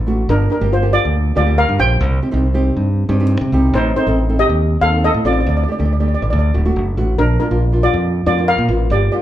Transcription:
0.00 0.23 A1 medium
0.07 0.27 A3 medium
0.07 0.27 D4 medium
0.07 0.27 F#4 medium
0.29 0.47 G1 loud
0.29 0.50 D4 medium
0.29 0.51 A#4 medium
0.49 0.56 A#3 medium
0.49 0.57 D4 medium
0.49 0.61 D4 medium
0.49 0.57 G4 medium
0.49 0.61 A#4 medium
0.61 0.97 G1 medium
0.61 0.74 A#3 medium
0.61 0.74 D4 medium
0.61 0.74 G4 medium
0.72 0.92 F4 medium
0.72 0.95 C5 medium
0.82 1.15 A#3 medium
0.82 1.15 D4 medium
0.82 1.15 G4 medium
0.93 1.34 F4 medium
0.93 1.36 D5 loud
1.05 1.31 D2 medium
1.35 1.63 D2 medium
1.35 1.43 A#3 medium
1.35 1.43 D4 medium
1.35 1.57 F4 medium
1.35 1.43 G4 medium
1.35 1.57 D5 medium
1.46 1.66 A#3 medium
1.46 1.66 D4 medium
1.46 1.66 G4 medium
1.58 1.78 A#4 medium
1.58 1.81 F5 loud
1.69 1.78 G2 medium
1.78 1.97 A#1 loud
1.78 2.01 A#3 medium
1.78 2.01 D4 medium
1.78 2.01 G4 medium
1.78 3.06 C5 medium
1.78 3.05 G5 loud
2.01 2.19 C2 loud
2.22 2.29 C4 medium
2.22 2.29 D#4 medium
2.22 2.29 G4 medium
2.31 2.69 C2 medium
2.31 2.46 C4 medium
2.31 2.46 D#4 medium
2.31 2.46 G4 loud
2.54 2.87 C4 medium
2.54 2.87 D#4 medium
2.54 2.87 G4 medium
2.77 3.03 G2 medium
3.09 3.36 G2 medium
3.09 3.16 C4 medium
3.09 3.16 D#4 medium
3.09 3.16 G4 loud
3.20 3.40 C4 medium
3.20 3.40 D#4 medium
3.20 3.30 G4 medium
3.30 3.71 G5 medium
3.41 3.50 C3 medium
3.52 3.70 C2 medium
3.52 3.74 C4 medium
3.52 3.74 D#4 medium
3.52 3.74 G4 medium
3.74 3.92 A1 loud
3.74 3.95 D#4 medium
3.74 3.95 C5 loud
3.96 4.03 C4 medium
3.96 4.03 D#4 medium
3.96 4.36 D#4 medium
3.96 4.03 A4 medium
3.96 4.36 C5 medium
4.07 4.42 A1 medium
4.07 4.20 C4 medium
4.07 4.20 D#4 medium
4.07 4.20 A4 medium
4.29 4.61 C4 medium
4.29 4.61 D#4 medium
4.29 4.61 A4 medium
4.39 4.79 G4 medium
4.39 4.79 D#5 loud
4.49 4.76 D#2 medium
4.81 5.08 D#2 loud
4.81 4.89 C4 medium
4.81 4.88 D#4 medium
4.81 4.89 A4 medium
4.81 5.02 A4 medium
4.81 5.04 F5 loud
4.92 5.12 C4 medium
4.92 5.12 D#4 medium
4.92 5.12 A4 medium
5.04 5.14 A4 medium
5.04 5.14 D#5 loud
5.14 5.23 A2 medium
5.24 5.43 A1 loud
5.24 5.46 C4 medium
5.24 5.46 D#4 medium
5.24 5.33 F4 medium
5.24 5.46 A4 medium
5.24 5.32 D5 loud
5.33 5.39 D5 medium
5.41 5.47 D5 medium
5.46 5.64 D2 loud
5.46 5.55 D5 medium
5.57 5.63 D5 medium
5.64 5.74 A3 medium
5.64 5.70 D5 medium
5.68 5.75 D4 medium
5.68 5.75 G4 medium
5.68 5.78 D5 medium
5.78 6.15 D2 medium
5.78 5.92 A3 medium
5.78 5.92 D4 medium
5.78 5.92 G4 medium
5.78 5.84 D5 soft
5.85 5.92 D5 medium
5.93 5.99 D5 medium
6.00 6.32 A3 medium
6.00 6.32 D4 medium
6.00 6.32 G4 medium
6.00 6.07 D5 medium
6.08 6.13 D5 medium
6.14 6.22 D5 medium
6.22 6.31 A1 medium
6.22 6.29 D5 medium
6.30 6.50 D2 loud
6.30 6.37 D5 medium
6.39 6.45 D5 medium
6.54 6.74 D1 medium
6.54 6.61 A3 medium
6.54 6.60 D4 medium
6.54 6.61 F#4 medium
6.65 6.84 A3 medium
6.65 6.84 D4 medium
6.65 6.84 F#4 loud
6.76 6.95 F#1 medium
6.97 7.17 A1 medium
6.97 7.19 A3 medium
6.97 7.19 D4 medium
6.97 7.19 F#4 loud
7.18 7.36 A#1 loud
7.18 7.39 D4 medium
7.18 7.39 A#4 loud
7.40 7.47 A#3 medium
7.40 7.80 D4 medium
7.40 7.47 D4 medium
7.40 7.47 F4 medium
7.40 7.84 A#4 medium
7.51 7.86 A#1 medium
7.51 7.64 A#3 medium
7.51 7.64 D4 medium
7.51 7.64 F4 medium
7.72 8.05 A#3 medium
7.72 8.05 D4 medium
7.72 8.05 F4 medium
7.83 8.24 F4 medium
7.83 8.26 D5 loud
7.94 8.20 F2 medium
8.26 8.53 F2 medium
8.26 8.33 A#3 medium
8.26 8.33 D4 medium
8.26 8.33 F4 medium
8.26 8.47 F4 medium
8.26 8.49 D5 loud
8.38 8.57 A#3 medium
8.38 8.57 D4 medium
8.38 8.57 F4 medium
8.48 8.68 A#4 medium
8.48 8.68 F5 loud
8.58 8.67 A#2 medium
8.69 8.87 A1 loud
8.69 8.91 A#3 medium
8.69 8.91 D4 medium
8.69 8.91 F4 medium
8.90 9.08 G1 loud
8.90 9.12 G4 medium
8.90 9.11 D5 medium
9.12 9.19 A#3 medium
9.12 9.19 D4 medium
9.12 9.22 F4 medium
9.12 9.19 G4 medium
9.12 9.22 D5 medium

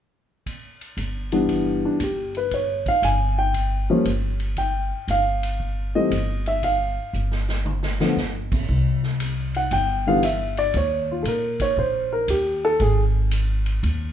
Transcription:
0.46 kick soft
0.46 ride soft
0.81 ride soft
0.97 1.82 G1 medium
0.97 hi-hat pedal soft
0.97 ride soft
1.32 1.97 E3 medium
1.32 1.97 G3 soft
1.32 1.97 B3 medium
1.32 1.84 D4 medium
1.32 ride soft
1.49 kick soft
1.49 ride soft
1.85 2.01 D4 medium
2.00 2.85 G1 medium
2.00 2.35 G4 soft
2.00 hi-hat pedal soft
2.00 ride soft
2.35 2.52 B4 medium
2.35 ride soft
2.51 2.86 C#5 medium
2.51 kick soft
2.51 ride soft
2.86 3.04 F5 medium
2.86 kick soft
2.86 ride soft
3.02 3.88 G1 medium
3.02 3.37 G#5 medium
3.02 hi-hat pedal medium
3.02 ride soft
3.38 3.86 G5 medium
3.54 kick soft
3.54 ride soft
3.90 4.05 F3 medium
3.90 4.05 G3 soft
3.90 4.05 A#3 medium
3.90 4.05 C#4 medium
4.05 4.91 G1 medium
4.05 hi-hat pedal soft
4.05 ride soft
4.40 ride soft
4.57 5.06 G5 medium
4.57 kick soft
4.57 ride soft
5.08 5.93 G1 medium
5.08 5.92 F5 medium
5.08 hi-hat pedal medium
5.08 ride soft
5.43 ride soft
5.60 kick soft
5.95 6.10 E3 soft
5.95 6.10 G3 soft
5.95 6.10 A3 soft
5.95 6.11 C4 soft
5.95 6.43 D#5 medium
6.10 6.96 G1 medium
6.10 hi-hat pedal soft
6.10 ride medium
6.46 6.63 E5 medium
6.46 ride soft
6.63 7.45 F5 medium
6.63 kick soft
6.63 ride soft
7.13 7.99 G1 medium
7.13 hi-hat pedal medium
7.32 snare soft
7.49 snare soft
7.66 mid tom soft
7.83 snare medium
8.00 8.15 D3 soft
8.00 8.16 F3 soft
8.00 8.16 A3 soft
8.00 8.16 B3 medium
8.00 snare medium
8.16 8.64 G1 medium
8.16 snare soft
8.16 hi-hat pedal soft
8.52 kick medium
8.52 crash medium
8.69 9.67 C2 medium
8.69 kick soft
9.03 snare soft
9.20 hi-hat pedal soft
9.20 ride medium
9.54 9.72 F#5 medium
9.54 ride soft
9.71 10.70 G1 medium
9.71 10.05 G5 medium
9.71 kick soft
9.71 ride soft
10.07 10.22 D3 medium
10.07 10.22 E3 medium
10.07 10.22 G3 medium
10.07 10.22 B3 medium
10.07 10.23 F5 medium
10.23 10.57 E5 medium
10.23 hi-hat pedal medium
10.23 ride medium
10.57 10.74 D5 medium
10.57 ride soft
10.74 11.22 D#2 medium
10.74 11.09 C#5 medium
10.74 kick soft
10.74 ride medium
11.12 11.27 F4 soft
11.22 11.73 A#2 medium
11.22 11.26 A4 soft
11.22 hi-hat pedal medium
11.22 ride medium
11.28 11.60 A#4 medium
11.60 11.77 C#5 medium
11.60 kick soft
11.60 ride medium
11.76 12.24 A#1 medium
11.76 12.11 C5 medium
11.76 kick soft
12.13 12.28 A#4 medium
12.28 12.76 D#2 medium
12.28 12.63 G4 medium
12.28 hi-hat pedal soft
12.28 ride medium
12.65 12.80 A4 loud
12.80 13.79 G#1 medium
12.80 13.02 G#4 medium
12.80 kick soft
12.80 ride soft
13.31 hi-hat pedal soft
13.31 ride medium
13.66 ride soft
13.83 14.13 D#2 medium
13.83 kick soft
13.83 ride soft

